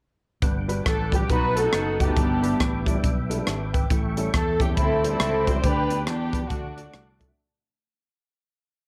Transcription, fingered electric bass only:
0.42 0.79 G1 medium
0.86 1.23 A1 medium
1.30 1.67 B1 medium
1.74 2.10 F#1 medium
2.17 2.54 G1 loud
2.60 2.97 A1 medium
3.04 3.41 B1 medium
3.47 3.84 G#1 medium
3.90 4.27 A1 loud
4.34 4.77 E2 medium
4.77 5.14 D2 medium
5.20 5.57 C#2 medium
5.64 6.07 D2 medium
6.07 6.44 E2 medium
6.50 6.87 D2 medium
6.94 7.31 C2 medium

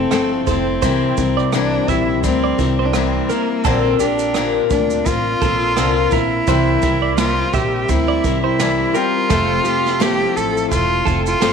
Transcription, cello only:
0.00 0.44 C4 medium
0.49 1.50 C4 medium
1.55 1.92 D4 medium
1.90 2.24 E4 medium
2.25 2.76 C4 medium
2.80 2.87 C4 medium
2.86 2.95 D4 medium
2.93 3.33 C4 medium
3.31 3.67 A#3 medium
3.66 4.00 C4 medium
4.01 4.67 D4 loud
4.72 5.08 D4 medium
5.07 6.14 F4 medium
6.13 7.19 E4 loud
7.19 7.55 F4 loud
7.54 7.91 G4 medium
7.89 8.43 E4 medium
8.44 8.98 E4 medium
8.96 10.03 F4 loud
10.02 10.38 G4 loud
10.37 10.71 A4 medium
10.72 11.23 F4 medium
11.27 11.53 F4 medium

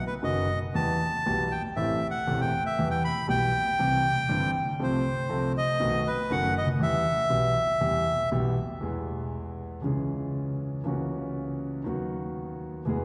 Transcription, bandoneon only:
0.07 0.14 B4 medium
0.24 0.59 D#5 medium
0.75 1.53 A5 medium
1.51 1.63 G5 medium
1.76 2.07 E5 medium
2.10 2.40 F#5 medium
2.41 2.64 G5 medium
2.66 2.89 E5 medium
2.91 3.03 G5 medium
3.04 3.27 B5 medium
3.30 4.51 G5 medium
4.83 5.53 C5 medium
5.58 6.08 D#5 medium
6.07 6.32 B4 medium
6.32 6.54 F#5 medium
6.58 6.69 D#5 medium
6.83 8.30 E5 medium

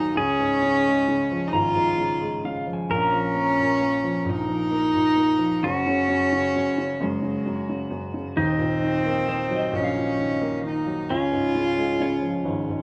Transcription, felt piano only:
0.00 0.11 D#1 medium
0.00 0.11 A#1 medium
0.00 0.11 D#2 medium
0.00 0.18 A#2 medium
0.00 0.17 D#3 medium
0.00 0.17 F#3 medium
0.00 0.17 A#3 medium
0.15 2.85 C#2 medium
0.39 1.51 G#2 soft
0.62 1.07 C#3 soft
0.86 2.20 G#3 medium
1.08 1.96 C#3 medium
1.31 2.65 F3 medium
1.53 2.85 G#1 medium
1.53 1.74 G#2 medium
1.76 2.86 G#2 soft
1.98 2.43 C#3 medium
2.21 2.87 G#3 medium
2.44 2.88 C#3 soft
2.67 2.89 F3 soft
2.90 4.24 A#1 medium
2.90 3.57 A#2 medium
3.12 4.02 F3 soft
3.35 3.80 A#3 soft
3.59 4.24 A#2 medium
3.81 4.70 A#3 medium
4.04 4.47 F3 medium
4.25 5.59 A#1 medium
4.25 4.93 A#2 medium
4.49 5.37 F3 soft
4.71 5.14 A#3 soft
4.94 5.61 A#2 medium
5.16 5.61 A#3 medium
5.38 5.61 F3 soft
5.63 6.99 F#1 medium
5.63 6.07 F#2 medium
5.86 6.31 C#3 soft
6.08 6.54 F#2 medium
6.33 6.77 C#3 medium
6.55 6.99 F#2 medium
6.78 7.21 C#3 soft
7.01 8.33 F#1 medium
7.01 7.45 F#2 medium
7.22 7.68 C#3 medium
7.46 7.89 F#2 medium
7.69 8.13 C#3 medium
7.90 8.35 F#2 medium
8.14 8.36 C#3 soft
8.37 11.06 D#1 medium
8.37 11.06 D#2 medium
8.59 9.71 A#2 medium
8.82 9.26 D#3 medium
9.05 10.40 A#3 medium
9.28 10.17 D#3 medium
9.50 10.85 F#3 medium
9.72 11.05 A#1 medium
9.72 9.93 A#2 medium
9.95 11.06 A#2 soft
10.18 10.62 D#3 medium
10.42 11.08 A#3 medium
10.64 11.08 D#3 medium
10.87 11.09 F#3 soft
11.10 12.82 C#2 medium
11.32 12.44 G#2 soft
11.55 11.99 C#3 medium
11.78 12.82 G#3 medium
12.00 12.82 C#3 medium
12.22 12.82 F3 medium
12.45 12.82 G#1 medium
12.45 12.68 G#2 medium
12.69 12.82 G#2 soft

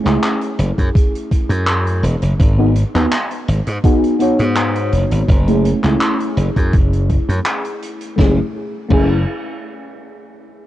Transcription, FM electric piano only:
0.04 2.37 A3 medium
0.04 2.37 C#4 medium
0.04 2.38 E4 medium
0.04 2.38 G#4 medium
2.58 2.69 B3 medium
2.58 2.69 D#4 medium
2.58 2.69 F#4 medium
2.58 2.69 G#4 medium
2.94 3.11 B3 medium
2.94 3.11 D#4 medium
2.94 3.12 F#4 medium
2.94 3.12 B4 medium
3.84 4.16 B3 medium
3.84 4.16 D#4 medium
3.84 4.16 F#4 medium
3.84 4.17 G#4 loud
4.19 5.26 B3 medium
4.19 5.27 D#4 medium
4.19 5.27 F#4 medium
4.19 5.28 C#5 loud
5.47 5.79 A3 medium
5.47 5.79 C#4 medium
5.47 5.80 E4 medium
5.47 5.80 G#4 medium
5.83 8.15 A3 medium
5.83 8.16 C#4 medium
5.83 8.16 E4 medium
5.83 8.17 G#4 medium
8.16 8.38 A3 medium
8.16 8.39 C#4 medium
8.16 8.39 E4 medium
8.21 8.40 G#4 medium
8.88 9.16 A3 medium
8.88 9.17 C#4 medium
8.88 9.18 E4 medium
8.93 9.19 G#4 medium

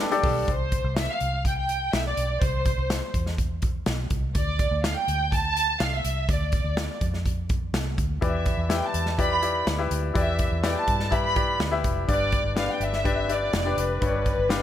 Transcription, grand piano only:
0.00 0.50 G2 medium
0.00 0.11 D4 medium
0.00 0.11 G4 medium
0.00 0.12 A4 medium
0.00 0.49 B4 medium
0.00 0.12 D5 medium
0.00 0.49 E5 medium
0.11 0.39 D4 medium
0.11 0.39 G4 medium
0.11 0.39 A4 medium
0.11 0.39 D5 medium
8.21 8.90 E3 medium
8.21 8.58 E4 medium
8.21 8.59 G4 medium
8.21 8.59 B4 medium
8.21 8.59 D5 medium
8.69 9.07 E4 medium
8.69 9.07 G4 medium
8.69 9.07 B4 medium
8.69 9.07 E5 medium
9.18 9.37 E4 medium
9.18 9.37 G4 medium
9.18 9.37 B4 medium
9.18 9.38 D5 medium
9.42 9.70 E4 medium
9.42 9.70 G4 medium
9.42 9.71 B4 soft
9.42 9.71 D5 medium
9.78 10.07 E4 medium
9.78 10.07 G4 medium
9.78 10.07 B4 medium
9.78 10.07 E5 medium
10.14 10.84 E3 soft
10.14 10.51 E4 medium
10.14 10.52 G4 medium
10.14 10.52 B4 medium
10.14 10.52 D5 medium
10.63 11.00 E4 medium
10.63 11.01 G4 medium
10.63 11.01 B4 medium
10.63 11.01 D5 medium
11.11 11.30 E4 medium
11.11 11.30 G4 medium
11.11 11.31 B4 medium
11.11 11.31 E5 medium
11.36 11.64 E4 medium
11.36 11.64 G4 soft
11.36 11.64 B4 medium
11.36 11.64 D5 medium
11.71 12.00 E4 medium
11.71 12.00 G4 medium
11.71 12.00 B4 medium
11.71 12.00 E5 medium
12.08 12.77 G2 medium
12.08 12.45 D4 medium
12.08 12.45 G4 medium
12.08 12.46 B4 medium
12.08 12.46 D5 medium
12.56 12.93 D4 medium
12.56 12.94 G4 medium
12.56 12.94 B4 medium
12.56 12.94 D5 medium
13.04 13.23 D4 medium
13.04 13.24 G4 medium
13.04 13.24 B4 medium
13.04 13.24 D5 medium
13.28 13.57 D4 medium
13.28 13.57 G4 medium
13.28 13.57 B4 soft
13.28 13.57 E5 medium
13.65 13.93 D4 medium
13.65 13.94 G4 medium
13.65 13.94 B4 medium
13.65 13.94 D5 medium
14.01 14.62 G2 medium
14.01 14.39 D4 medium
14.01 14.39 G4 medium
14.01 14.39 B4 medium
14.01 14.08 C#5 medium
14.08 14.42 D5 medium
14.49 14.62 D4 medium
14.49 14.62 G4 medium
14.49 14.62 B4 medium
14.49 14.62 F5 medium

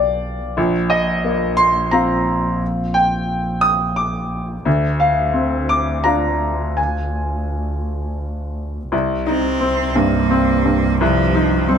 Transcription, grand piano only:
0.00 0.53 D4 soft
0.00 0.53 G4 soft
0.00 0.53 D5 soft
0.00 0.60 F5 medium
0.00 0.59 G5 medium
0.57 2.57 A#1 medium
0.90 1.54 D#5 medium
1.24 2.33 A#3 soft
1.57 1.89 C6 medium
1.91 4.62 C4 soft
1.91 4.63 F4 soft
1.91 2.56 A#5 medium
2.94 3.59 G5 medium
3.61 3.94 D#6 medium
3.96 4.62 D6 soft
4.65 6.73 D2 soft
5.00 5.65 F5 medium
5.34 6.48 C4 soft
5.69 6.02 D6 medium
6.04 8.88 D4 soft
6.04 8.88 F4 soft
6.04 6.73 A#5 soft
6.77 8.53 G#5 soft
8.92 10.97 C2 soft
9.27 9.83 D#4 soft
9.60 10.17 C4 soft
9.95 10.52 G2 soft
10.30 10.87 C4 soft
10.65 11.22 G2 soft
11.01 11.78 C2 medium
11.35 11.78 D#4 soft
11.68 11.78 C4 soft

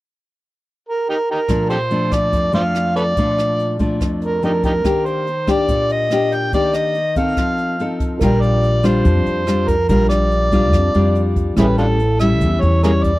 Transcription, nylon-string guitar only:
1.49 2.31 A#2 medium
1.49 1.76 F3 soft
1.49 1.76 A3 soft
1.49 1.76 D4 soft
1.91 2.50 F3 soft
1.91 2.51 A3 soft
1.91 2.51 D4 medium
2.33 3.15 F2 medium
2.53 3.13 F3 medium
2.53 3.13 A3 medium
2.53 3.13 D4 medium
3.17 3.99 A#2 medium
3.17 3.77 F3 soft
3.17 3.77 A3 soft
3.17 3.77 D4 soft
3.79 4.39 F3 medium
3.79 4.39 A3 medium
3.79 4.40 D4 medium
4.01 4.83 F2 medium
4.43 4.81 F3 soft
4.43 4.82 A3 soft
4.43 4.82 D4 soft
4.84 5.67 D#3 medium
4.84 5.26 A#3 soft
4.84 5.27 D4 soft
4.84 5.27 G4 medium
5.47 6.07 A#3 medium
5.47 6.07 D4 soft
5.47 6.08 G4 medium
5.69 6.51 A#2 medium
6.12 6.50 A#3 soft
6.12 6.50 D4 soft
6.12 6.50 G4 soft
6.54 7.35 D#3 medium
6.54 6.95 A#3 soft
6.54 6.95 D4 soft
6.54 6.95 G4 soft
7.16 7.76 C4 medium
7.16 7.76 D#4 soft
7.16 7.76 A4 soft
7.38 8.19 F3 medium
7.80 8.18 C4 soft
7.80 8.18 D#4 soft
7.80 8.19 A4 soft
8.22 9.04 A#2 soft
8.22 8.81 G3 soft
8.22 8.82 D4 soft
8.22 8.81 F4 medium
8.83 9.43 G3 medium
8.83 9.44 D4 medium
8.83 9.44 F4 medium
9.05 9.87 F3 soft
9.47 9.74 G3 soft
9.47 9.74 D4 soft
9.47 9.74 F4 soft
9.89 10.71 A#2 soft
9.89 10.49 G3 soft
9.89 10.49 D4 soft
9.89 10.49 F4 medium
10.52 10.91 G3 medium
10.52 10.91 D4 medium
10.52 10.91 F4 medium
10.73 11.55 F3 soft
10.95 11.54 G3 medium
10.95 11.54 D4 medium
10.95 11.54 F4 medium
11.57 12.39 A2 soft
11.57 11.99 G3 medium
11.57 11.99 C#4 soft
11.57 11.99 E4 medium
12.20 12.80 G3 medium
12.20 12.80 C#4 medium
12.20 12.81 E4 medium
12.42 13.19 E3 soft
12.84 13.11 G3 soft
12.84 13.11 C#4 soft
12.84 13.11 E4 medium

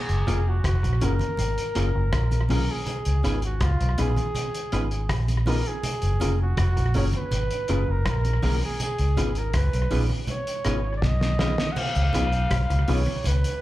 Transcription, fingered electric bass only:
0.09 0.26 F#1 medium
0.28 0.62 F1 medium
0.64 0.82 F1 medium
0.84 1.00 A#1 medium
1.02 1.19 F#1 medium
1.39 1.56 G#1 medium
1.76 1.93 F#1 medium
1.95 2.13 F#1 medium
2.13 2.47 A#1 medium
2.50 2.67 B1 medium
3.06 3.23 C#2 medium
3.24 3.58 G#1 medium
3.61 3.78 C#2 medium
3.81 3.97 B1 medium
3.99 4.16 A#1 medium
4.73 5.07 G#1 medium
5.10 5.61 A#1 medium
6.03 6.19 F#1 medium
6.21 6.55 F1 medium
6.58 6.75 F1 medium
6.77 6.93 A#1 medium
6.95 7.12 F#1 medium
7.32 7.49 G#1 medium
7.69 7.86 F#1 medium
7.88 8.05 F#1 medium
8.06 8.40 A#1 medium
8.44 8.61 B1 medium
8.99 9.16 C#2 medium
9.17 9.51 G#1 medium
9.54 9.72 C#2 medium
9.73 9.90 B1 medium
9.91 10.09 A#1 medium
10.65 11.00 G#1 medium
11.03 11.55 B1 medium
11.96 12.13 C#2 loud
12.14 12.48 B1 medium
12.51 12.68 B1 medium
12.70 12.87 C#2 loud
12.89 13.06 B1 medium
13.25 13.43 C#2 medium

